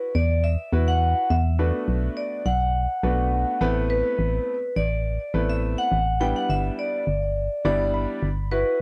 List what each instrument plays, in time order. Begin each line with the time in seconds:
Already playing: grand piano B4, vibraphone B4
0.15 fm bass E2, vibraphone D5
0.44 vibraphone E5
0.72 fm bass E2, grand piano E4 F#4 B4
0.88 vibraphone F#5
1.30 fm bass E2, vibraphone E5
1.59 grand piano A3 B3 D4 F#4 B4
1.88 fm bass B1
2.17 vibraphone D5
2.46 fm bass B1, vibraphone F#5
3.03 fm bass B1, grand piano A3 B3 D4 F#4 B4
3.61 fm bass A1, grand piano A3 B3 C4 E4 B4
3.90 vibraphone B4
4.19 fm bass A1
4.76 fm bass A1, vibraphone D5
5.34 fm bass A1, grand piano A3 B3 C4 E4 B4
5.50 vibraphone E5
5.78 vibraphone F#5
5.92 fm bass A1
6.20 grand piano G3 B3 D4 E4 B4, vibraphone G5
6.36 vibraphone F#5
6.50 fm bass G1, vibraphone E5
6.79 vibraphone D5
7.07 fm bass G1
7.65 fm bass G1, grand piano G3 B3 D4 E4 D5
7.94 grand piano B5
8.23 fm bass G1
8.51 grand piano E4 F#4 B4, vibraphone B4